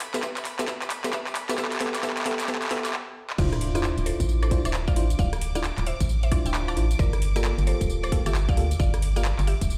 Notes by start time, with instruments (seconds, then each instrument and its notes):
Already playing: violin section B5
0.00 clap, open hi-hat
0.14 fm electric piano B3 G4 A4, synth pluck B4 E5, clap, closed hi-hat, tambourine
0.23 synth pluck B4 E5, kick, clap, tambourine
0.37 clap, closed hi-hat, tambourine
0.45 clap, open hi-hat
0.59 fm electric piano B3 G4 A4, synth pluck B4 E5, clap, closed hi-hat, tambourine
0.68 synth pluck B4 E5, kick, clap, tambourine
0.82 clap, closed hi-hat, tambourine
0.90 clap, open hi-hat
1.04 fm electric piano B3 G4 A4, synth pluck B4 E5, clap, closed hi-hat, tambourine
1.13 synth pluck B4 E5, kick, clap, tambourine
1.27 clap, tambourine
1.35 clap, open hi-hat
1.49 fm electric piano B3 G4 A4, synth pluck B4 E5, clap, closed hi-hat, tambourine, high woodblock
1.58 fm electric piano B3 G4 A4, synth pluck B4 E5, kick, clap, tambourine
1.65 clap
1.72 clap, closed hi-hat, tambourine
1.76 clap
1.80 fm electric piano B3 G4 A4, synth pluck B4 E5, clap, open hi-hat
1.87 clap
1.95 clap, closed hi-hat, tambourine, high woodblock
1.99 clap
2.03 fm electric piano B3 G4 A4, synth pluck B4 E5, kick, clap, tambourine
2.10 clap
2.17 clap, closed hi-hat, tambourine
2.21 clap
2.26 fm electric piano B3 G4 A4, synth pluck B4 E5, clap, open hi-hat
2.33 clap
2.40 clap, closed hi-hat, tambourine
2.44 clap
2.48 fm electric piano B3 G4 A4, synth pluck B4 E5, kick, clap, tambourine
2.55 clap
2.62 clap, closed hi-hat, tambourine
2.66 clap
2.71 fm electric piano B3 G4 A4, synth pluck B4 E5, clap, open hi-hat
2.78 clap
2.85 clap, closed hi-hat, tambourine, high woodblock
2.89 clap
2.93 clap
3.30 clap
3.38 fm bass D1, fm electric piano D4 E4 F4 C5, synth pluck F4 D5, violin section D6, kick, tambourine, crash, sub drop
3.53 cross-stick, closed hi-hat, tambourine
3.61 open hi-hat
3.75 fm electric piano D4 E4 F4 C5, synth pluck F4 D5, cross-stick, closed hi-hat, tambourine
3.84 clap, tambourine
3.98 fm bass D1, closed hi-hat, tambourine
4.06 synth pluck A4 C5, open hi-hat
4.20 fm bass A1, kick, closed hi-hat, tambourine
4.29 tambourine
4.43 synth pluck A4 C5, closed hi-hat, tambourine, high woodblock
4.51 fm electric piano D4 E4 F4 C5, kick, open hi-hat
4.65 fm bass D1, fm electric piano D4 E4 F4 C5, synth pluck C5 E5, closed hi-hat, tambourine, high woodblock
4.74 clap, tambourine
4.88 synth pluck D5 F5, kick, tambourine
4.96 fm bass A1, fm electric piano D4 E4 F4 C5, open hi-hat
5.10 closed hi-hat, tambourine
5.19 fm bass D1, synth pluck D5 F5, kick, tambourine
5.33 cross-stick, closed hi-hat, tambourine
5.41 open hi-hat
5.55 fm electric piano D4 E4 F4 D5, synth pluck D5 F5, cross-stick, closed hi-hat, tambourine
5.64 clap, tambourine
5.78 fm bass D1, clap, closed hi-hat, tambourine
5.87 synth pluck C5 E5, open hi-hat
6.00 fm bass A1, kick, closed hi-hat, tambourine
6.09 tambourine
6.23 synth pluck C5 E5, closed hi-hat, tambourine
6.32 fm electric piano D4 E4 F4 C5, kick, open hi-hat, high woodblock
6.46 fm bass D1, synth pluck E5 G5, closed hi-hat, tambourine
6.54 clap, tambourine
6.68 synth pluck F5 A5, tambourine, high woodblock
6.77 fm bass A1, fm electric piano D4 E4 F4 C5, open hi-hat
6.91 closed hi-hat, tambourine
6.99 fm bass G1, synth pluck A#4 D5, kick, tambourine
7.13 cross-stick, closed hi-hat, tambourine
7.22 open hi-hat
7.36 fm electric piano A#3 F4 G4 A4, synth pluck A#4 D5, cross-stick, closed hi-hat, tambourine
7.44 clap, tambourine
7.58 fm bass G1, closed hi-hat, tambourine
7.67 synth pluck A4 C5, open hi-hat
7.81 fm bass D1, kick, closed hi-hat, tambourine
7.90 tambourine
8.03 synth pluck A4 C5, closed hi-hat, tambourine, high woodblock
8.12 fm electric piano A#3 F4 G4 A4, kick, open hi-hat
8.26 fm bass G1, fm electric piano A#3 F4 G4 A4, synth pluck G4 E5, closed hi-hat, tambourine, high woodblock
8.35 clap, tambourine
8.49 synth pluck D5 F5, kick, tambourine
8.57 fm bass D2, fm electric piano A#3 F4 G4 A4, open hi-hat
8.71 closed hi-hat, tambourine
8.79 fm bass G1, synth pluck D5 F5, kick, tambourine
8.94 cross-stick, closed hi-hat, tambourine
9.02 open hi-hat
9.16 fm electric piano A#3 F4 G4 A#4, synth pluck D5 F5, cross-stick, closed hi-hat, tambourine
9.25 clap, tambourine
9.39 fm bass G1, clap, closed hi-hat, tambourine
9.47 synth pluck G4 E5, open hi-hat
9.61 fm bass D1, kick, closed hi-hat, tambourine
9.70 tambourine